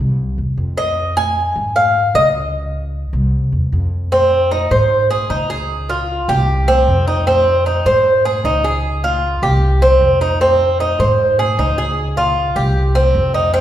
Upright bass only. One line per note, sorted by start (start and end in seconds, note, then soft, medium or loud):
0.00 0.35 C2 loud
0.38 0.56 E2 medium
0.57 1.50 F2 medium
1.56 2.11 G#2 medium
2.14 3.07 C#2 medium
3.13 3.50 C2 medium
3.52 3.71 E2 medium
3.72 4.65 F2 medium
4.71 5.26 G#2 medium
5.30 6.22 C#2 medium
6.28 6.83 C2 medium
6.87 7.80 F2 medium
7.85 8.40 G#2 medium
8.44 9.36 C#2 medium
9.42 9.97 C2 medium
10.01 10.93 F2 medium
10.99 11.54 G#2 medium
11.58 12.50 C#2 medium
12.56 13.10 C2 medium
13.14 13.61 F2 medium